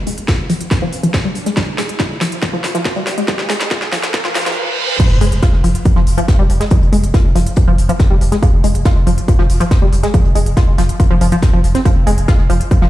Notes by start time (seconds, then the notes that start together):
Already playing: riser
0.06 G#3, closed hi-hat, open hi-hat
0.18 closed hi-hat
0.28 F4, kick, snare, closed hi-hat
0.49 F3, snare, closed hi-hat, open hi-hat
0.61 closed hi-hat
0.71 F3, kick, snare, closed hi-hat
0.82 F3
0.93 closed hi-hat, open hi-hat
1.03 F3, closed hi-hat
1.13 kick, snare, closed hi-hat
1.25 G3
1.35 closed hi-hat, open hi-hat
1.46 G#3, snare, closed hi-hat
1.57 F3, kick, snare, closed hi-hat
1.78 G#3, snare, closed hi-hat, open hi-hat
1.89 closed hi-hat
1.99 F4, kick, snare, closed hi-hat
2.11 snare
2.21 F3, snare, closed hi-hat, open hi-hat
2.32 closed hi-hat
2.42 F3, kick, snare, closed hi-hat
2.53 F3, snare
2.64 snare, closed hi-hat, open hi-hat
2.75 F3, snare, closed hi-hat
2.85 kick, snare, closed hi-hat, open hi-hat
2.95 G3, closed hi-hat
3.07 snare, open hi-hat
3.18 G#3, closed hi-hat
3.28 F3, kick, snare, closed hi-hat
3.39 snare, closed hi-hat
3.49 G#3, snare, closed hi-hat, open hi-hat
3.61 snare, closed hi-hat
3.71 F4, kick, snare, closed hi-hat
3.82 snare
3.92 F3, snare, closed hi-hat, open hi-hat
4.03 snare, closed hi-hat
4.14 F3, kick, snare, closed hi-hat, reverse cymbal
4.25 F3, snare
4.34 F3, snare, closed hi-hat, open hi-hat
4.41 snare, closed hi-hat
4.46 F3, snare, closed hi-hat
4.51 snare, closed hi-hat
4.78 high tom
4.89 mid tom
5.00 F3, kick, closed hi-hat, crash, sub drop
5.11 F1
5.21 F1 G#3, closed hi-hat, open hi-hat
5.32 F1, closed hi-hat
5.42 F4, kick, snare, closed hi-hat
5.53 F1, snare
5.64 F1 F3, closed hi-hat, open hi-hat
5.75 closed hi-hat
5.85 F3, kick, closed hi-hat
5.96 F1 F3, snare
6.07 F1, open hi-hat
6.18 F3, closed hi-hat
6.28 kick, snare, closed hi-hat
6.39 F1 G3
6.50 F1, closed hi-hat, open hi-hat
6.60 G#3, snare, closed hi-hat
6.70 F3, kick, closed hi-hat
6.82 F1, closed hi-hat
6.93 F1 G#3, closed hi-hat, open hi-hat
7.04 F1, closed hi-hat
7.14 F4, kick, snare, closed hi-hat
7.25 F1
7.35 F1 F3, snare, closed hi-hat, open hi-hat
7.46 closed hi-hat
7.56 F3, kick, closed hi-hat
7.68 F1 F3
7.78 F1, closed hi-hat, open hi-hat
7.89 F3, closed hi-hat
7.99 kick, snare, closed hi-hat
8.11 F1 G3
8.21 F1, closed hi-hat, open hi-hat
8.32 G#3, snare, closed hi-hat
8.42 F3, kick, closed hi-hat
8.54 F1
8.64 F1 G#3, closed hi-hat, open hi-hat
8.75 F1, closed hi-hat
8.85 F4, kick, snare, closed hi-hat
8.96 F1, snare
9.07 F1 F3, closed hi-hat, open hi-hat
9.18 closed hi-hat
9.28 F3, kick, closed hi-hat
9.39 F1 F3, snare
9.50 F1, open hi-hat
9.60 F3, closed hi-hat
9.71 kick, snare, closed hi-hat
9.82 F1 G3
9.93 F1, closed hi-hat, open hi-hat
10.03 G#3, snare, closed hi-hat
10.13 F3, kick, closed hi-hat
10.25 F1, closed hi-hat
10.35 F1 G#3, closed hi-hat, open hi-hat
10.46 F1, closed hi-hat
10.57 F4, kick, snare, closed hi-hat
10.68 F1
10.78 F1 F3, snare, closed hi-hat, open hi-hat
10.89 closed hi-hat
11.00 F3, kick, closed hi-hat
11.11 F1 F3
11.21 F1 F3, closed hi-hat, open hi-hat
11.32 F3, closed hi-hat
11.42 kick, snare, closed hi-hat
11.53 F1 F3
11.64 F1, closed hi-hat, open hi-hat
11.75 C4, snare, closed hi-hat
11.85 F3, kick, closed hi-hat
11.96 F1
12.07 F1 G#3, closed hi-hat, open hi-hat
12.18 F1, closed hi-hat
12.28 F4, kick, snare, closed hi-hat
12.39 F1, snare
12.50 F1 F3, closed hi-hat, open hi-hat
12.61 closed hi-hat
12.71 F3, kick, closed hi-hat
12.82 F1 F3, snare